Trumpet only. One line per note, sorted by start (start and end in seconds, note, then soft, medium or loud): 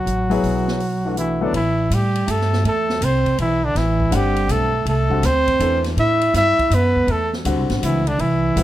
0.00 1.14 F#4 medium
1.18 1.45 E4 medium
1.44 1.55 D4 medium
1.56 1.96 E4 medium
1.94 2.33 G4 medium
2.31 2.66 A4 medium
2.67 3.06 A4 medium
3.05 3.40 C5 medium
3.41 3.66 E4 medium
3.65 3.79 D4 medium
3.77 4.17 E4 medium
4.16 4.53 G4 medium
4.51 4.87 A4 medium
4.89 5.27 A4 medium
5.26 5.86 C5 loud
6.00 6.33 E5 medium
6.37 6.76 E5 loud
6.75 7.13 B4 medium
7.11 7.34 A4 medium
7.84 8.10 E4 medium
8.08 8.22 D4 medium
8.21 8.63 E4 medium